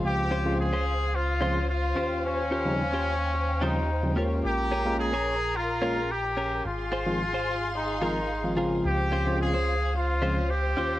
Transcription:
<<
  \new Staff \with { instrumentName = "String section" } { \time 4/4 \key des \lydian \tempo 4 = 109 << { f''2.~ f''8 g''8~ | g''1 | bes''1 | <f'' c'''>1 |
f''2.~ f''8 g''8 | } \\ { c''1~ | c''1 | bes'1 | aes'1 |
c''2.~ c''8 f''8 | } >> }
  \new Staff \with { instrumentName = "Clean electric guitar" } { \time 4/4 \key des \lydian r8 <des' f' c''>8 r16 <des' f' c''>16 r4 <des' f' c''>8 r8 <des' f' g' c''>8~ | <des' f' g' c''>16 r16 <des' f' g' bes'>8 r16 <des' f' g' c''>16 r4 <des' f' g' c''>8 r8 <des' f' g' des''>8 | r8 <des' aes' bes'>8 r16 <des' aes' des''>16 r4 <des' aes' bes'>8 r8 <des' aes' bes'>8 | r8 <f' aes' c''>8 r16 <f' aes' c''>16 r4 <f' aes' bes'>8 r8 <f' aes' bes'>8 |
r8 <des' f' c''>8 r16 <des' f' c''>16 r4 <des' f' c''>8 r8 <des' f' g' c''>8 | }
  \new Staff \with { instrumentName = "Trumpet section" } { \time 4/4 \key des \lydian g'4 aes'4 f'4 f'4 | des'2~ des'8 ees'4 r8 | g'4 aes'4 f'4 g'4 | f'2 ees'8 ees'4 r8 |
g'4 aes'4 f'4 g'4 | }
  \new Staff \with { instrumentName = "Tine electric piano" } { \clef bass \time 4/4 \key des \lydian <des f aes c' f'>8. <des f aes c' f'>8 r4 r16 <des f aes c' f'>16 r4 r16 | r8. <des f g c' ees'>16 r4. <des f g c' ees'>16 r8 <des f g c' ees'>16 <aes bes des' f' bes'>8~ | <aes bes des' f' bes'>8. <aes bes des' f' bes'>8 r4 r16 <aes bes des' f' bes'>16 r4 r16 | r8. <ees f aes c' f'>16 r4. <ees f aes c' f'>16 r8 <ees f aes c' f'>16 <des f aes c' f'>8~ |
<des f aes c' f'>8. <des f aes c' f'>8 r4 r16 <des f aes c' f'>16 r4 r16 | }
  \new Staff \with { instrumentName = "Analog synth bass" } { \clef bass \time 4/4 \key des \lydian des,2.~ des,8 ees,8~ | ees,1 | bes,,1 | aes,,1 |
des,2.~ des,8 ees,8 | }
>>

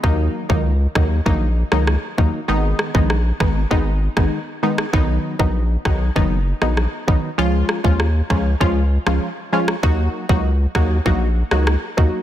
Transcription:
<<
  \new Staff \with { instrumentName = "Synth stab" } { \time 4/4 \key ees \minor \tempo 4 = 98 <ees ges bes ees'>8. <ees ges bes ees'>16 r8 <ees ges bes ees'>16 r16 <ees ges bes ees'>16 r8 <ees ges bes ees'>16 r8 <ees ges bes ees'>16 r16 | <ees aes ces' ees'>8. <ees aes ces' ees'>16 r8 <ees aes ces' ees'>16 r16 <ees aes ces' ees'>16 r8 <ees aes ces' ees'>16 r8 <ees aes ces' ees'>16 r16 | <dis fis b dis'>8. <dis fis b dis'>16 r8 <dis fis b dis'>16 r16 <dis fis b dis'>16 r8 <dis fis b dis'>16 r8 <dis fis b dis'>16 r16 | <f aes des' f'>8. <f aes des' f'>16 r8 <f aes des' f'>16 r16 <f aes des' f'>16 r8 <f aes des' f'>16 r8 <f aes des' f'>16 r16 |
<ges bes ees' ges'>8. <ges bes ees' ges'>16 r8 <ges bes ees' ges'>16 r16 <ges bes ees' ges'>16 r8 <ges bes ees' ges'>16 r8 <ges bes ees' ges'>16 r16 | }
  \new Staff \with { instrumentName = "Sub bass" } { \clef bass \time 4/4 \key ees \minor ees,8 r16 des,8. ees,8 bes,,8. des,8 r16 ees,16 r16 | aes,,8 r16 bes,,8. aes,,8 aes,,8. aes,,16 r4 | b,,8 r16 bes,,8. b,,8 fis,,8. bes,,8 r16 b,,16 r16 | des,8 r16 ees,8. des,8 des,8. des,16 r4 |
ees,8 r16 des,8. ees,8 bes,,8. des,8 r16 ees,16 r16 | }
  \new DrumStaff \with { instrumentName = "Drums" } \drummode { \time 4/4 bd8. bd16 r8 <bd ss>8 bd8. ss16 ss8 bd8 | r8 ss16 bd16 ss8 <bd ss>8 bd8. <bd ss>16 r8. ss16 | bd8. bd16 r8 <bd ss>8 bd8. ss16 ss8 bd8 | r8 ss16 bd16 ss8 <bd ss>8 bd8. ss16 r8. ss16 |
bd8. bd16 r8 <bd ss>8 bd8. ss16 ss8 bd8 | }
>>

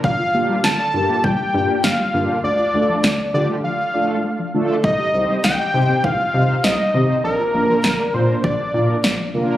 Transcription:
<<
  \new Staff \with { instrumentName = "Analog synth lead" } { \time 4/4 \key g \minor \tempo 4 = 100 f''4 a''4 g''4 f''4 | d''4. d''8 f''4. r8 | ees''4 g''4 f''4 ees''4 | bes'4. c''8 d''4. r8 | }
  \new Staff \with { instrumentName = "Analog polysynth" } { \time 4/4 \key g \minor r8 <bes d' f' g'>8 r8 <bes d' f' g'>8 r8 <bes d' f' g'>8 r8 <bes d' f' g'>8 | r8 <a d' f' a'>8 r8 <a d' f' g'>8 r8 <a d' f' a'>8 r8 <a d' f' a'>8 | r8 <c' ees' g' c''>8 r8 <c' ees' g' c''>8 r8 <c' ees' g' c''>8 r8 <c' ees' g' c''>8 | r8 <bes d' f' bes'>8 r8 <bes d' f' bes'>8 r8 <bes d' f' bes'>8 r8 <bes d' f' bes'>8 | }
  \new Staff \with { instrumentName = "Synth arpeggio sound" } { \time 4/4 \key g \minor d''16 f'16 bes16 g16 d16 d''16 f'16 bes16 g16 r16 d''16 f'16 bes16 g16 d16 d''16 | d''16 f'16 a16 f16 d16 d''16 f'16 a16 f16 r16 d''16 f'16 a16 f16 d16 d''16 | ees''16 g'16 c'16 g16 ees16 ees''16 g'16 c'16 g16 r16 ees''16 g'16 c'16 g16 ees16 ees''16 | d''16 f'16 bes16 f16 d16 d''16 f'16 bes16 f16 r16 d''16 f'16 bes16 f16 d16 d''16 | }
  \new Staff \with { instrumentName = "Analog synth bass" } { \clef bass \time 4/4 \key g \minor g,,16 r16 g,,16 r16 g,,16 r16 g,16 r16 g,,16 r16 g,16 r16 g,,16 r16 g,16 r16 | d,16 r16 d,16 r16 d,16 r16 d16 r2 r16 | c,16 r16 c,16 r16 c,16 r16 c16 r16 c,16 r16 c16 r16 c,16 r16 c16 r16 | bes,,16 r16 bes,,16 r16 bes,,16 r16 bes,16 r16 bes,,16 r16 bes,16 r16 bes,,16 r16 f,,16 r16 | }
  \new DrumStaff \with { instrumentName = "Drums" } \drummode { \time 4/4 bd4 sn4 bd4 sn4 | r4 sn4 r4 r4 | bd4 sn4 bd4 sn4 | r4 sn4 bd4 sn4 | }
>>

